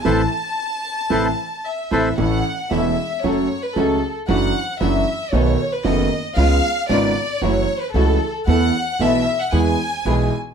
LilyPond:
<<
  \new Staff \with { instrumentName = "Violin section" } { \time 4/4 \key a \minor \tempo 4 = 114 a''2. e''4 | \key a \major fis''4 e''4 cis''8. b'16 a'8. r16 | fis''4 e''4 cis''8. b'16 dis''8. r16 | eis''4 d''4 cis''8. b'16 a'8. r16 |
fis''4 e''8. fis''16 gis''4. r8 | }
  \new Staff \with { instrumentName = "Bandoneon" } { \time 4/4 \key a \minor <a' b' c''>8 r4. <a' b' c''>8 r4 <a' b' c''>8 | \key a \major r1 | r1 | r1 |
r1 | }
  \new Staff \with { instrumentName = "String section" } { \time 4/4 \key a \minor <c' e' a'>8 r4. <c' e' a'>8 r4 <c' e' a'>8 | \key a \major <cis' e' a'>8 r8 <cis' e' a'>8 r8 <cis' fis' a'>8 r8 <cis' fis' a'>8 r8 | <d' e' fis'>8 r8 <d' e' fis'>8 r8 <b dis' a'>8 r8 <b dis' a'>8 r8 | <b cis' eis'>8 r8 <b cis' eis'>8 r8 <a e' fis'>8 r8 <a e' fis'>8 r8 |
<b e' a'>8 r8 <b e' a'>8 r8 <b e' gis'>8 r8 <b e' gis'>8 r8 | }
  \new Staff \with { instrumentName = "Grand piano" } { \clef bass \time 4/4 \key a \minor <c e a>8 r4. <c e a>8 r4 <c e a>8 | \key a \major <a,, a, e a cis' a'>8 r8 <e,, e, e a cis' a'>8 r8 <fis, fis a cis' a'>8 r8 <cis, cis fis a cis' a'>8 r8 | <fis, e fis a d' fis'>8 r8 <fis, e fis a d' fis'>8 r8 <b,, b, dis a b fis'>8 r8 <fis,, fis, dis a b fis'>8 r8 | <cis, cis gis b eis'>8 r8 <gis,, gis, cis gis b eis'>8 r8 <fis, e fis a cis' fis'>8 r8 <cis, cis e a cis' fis'>8 r8 |
<e, e a b a'>8 r8 <b,, b, e a b a'>8 r8 <e, e gis b gis'>8 r8 <b,, b, e gis b gis'>8 r8 | }
  \new Staff \with { instrumentName = "Upright bass" } { \clef bass \time 4/4 \key a \minor a,,8 r4. a,,8 r4 a,,8 | \key a \major a,,8 r8 e,,8 r8 fis,,8 r8 cis,8 r8 | fis,,8 r8 fis,,8 r8 b,,8 r8 fis,,8 r8 | cis,8 r8 gis,,8 r8 fis,,8 r8 cis,8 r8 |
e,8 r8 b,,8 r8 e,8 r8 b,,8 r8 | }
>>